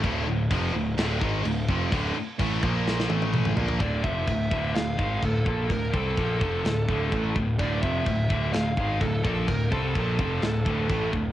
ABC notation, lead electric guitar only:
X:1
M:4/4
L:1/8
Q:1/4=127
K:Dm
V:1 name="Lead electric guitar"
z8 | z8 | d e3 f2 A A | B A6 z |
d e3 f2 A A | B A6 z |]